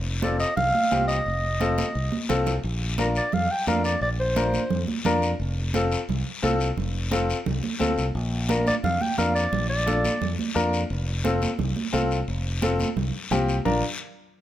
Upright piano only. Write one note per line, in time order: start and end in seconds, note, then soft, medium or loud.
0.22 0.46 C4 medium
0.22 0.47 F4 medium
0.22 0.47 A4 medium
0.91 1.16 C4 medium
0.91 1.16 F4 medium
0.91 1.16 G4 medium
1.60 1.84 C4 medium
1.60 1.85 F4 medium
1.60 1.85 A4 medium
2.29 2.53 C4 medium
2.29 2.53 F4 medium
2.29 2.54 A4 loud
2.98 3.22 D4 medium
2.98 3.23 F4 medium
2.98 3.23 A#4 medium
3.67 3.91 D4 medium
3.67 3.91 F4 medium
3.67 3.92 A#4 medium
4.36 4.60 D4 medium
4.36 4.60 F4 medium
4.36 4.61 A#4 medium
5.05 5.29 D4 medium
5.05 5.29 F4 medium
5.05 5.30 A#4 loud
5.74 5.98 C4 medium
5.74 5.98 F4 medium
5.74 5.99 A4 medium
6.42 6.67 C4 medium
6.42 6.67 F4 medium
6.42 6.67 A4 loud
7.11 7.36 C4 medium
7.11 7.36 F4 medium
7.11 7.36 A4 medium
7.80 8.04 C4 medium
7.80 8.04 F4 medium
7.80 8.05 A4 medium
8.49 8.73 D4 medium
8.49 8.73 F4 medium
8.49 8.74 A#4 medium
9.18 9.42 D4 medium
9.18 9.42 F4 medium
9.18 9.42 A#4 medium
9.86 10.11 D4 medium
9.86 10.11 F4 medium
9.86 10.11 A4 medium
10.55 10.79 D4 medium
10.55 10.80 F4 medium
10.55 10.80 A#4 loud
11.24 11.49 C4 medium
11.24 11.49 F4 medium
11.24 11.49 A4 medium
11.93 12.17 C4 medium
11.93 12.17 F4 medium
11.93 12.18 A4 medium
12.62 12.86 C4 medium
12.62 12.86 F4 medium
12.62 12.87 A4 medium
13.31 13.55 C4 medium
13.31 13.55 F4 medium
13.31 13.56 G4 loud
13.65 13.81 D4 medium
13.65 13.81 F4 medium
13.65 13.81 A#4 medium